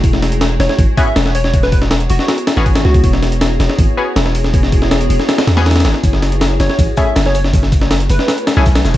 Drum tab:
HH |o---o-x-o---o---o---o---o---o---|o---o---o-x-o---o-x-o---o-o---o-|o---o-x-o---o---o-------o---o---|o---o---o-x-o---o-o-o-o-ooooo---|
SH |--------------------------------|--------------------------------|--------------------------------|--------------------------------|
SD |--o-o---o---o-o---------o-o---o-|--o---o-o-----o-o---o-o---o-o---|--o-o---o---o-o---------o-o---o-|--o---o-o-----o-o-o-o-o-ooooo-o-|
BD |o---------------o---o-----------|o---o-------------------o-----o-|o---------------o---------------|o---o---------------------------|

HH |o---o-x-o---o---o---o---o---o---|o---o-x-o-x-o---o-x-o---o-o---o-|
SH |x---x---x---x---x---x---x---x---|x---x---x---x---x---x---x---x---|
SD |--o-o---o---o-o---------o-o---o-|--o---o-o-----o-o---o-o-o-o-o---|
BD |o---------------o---o-----------|o---o-------------------o-----o-|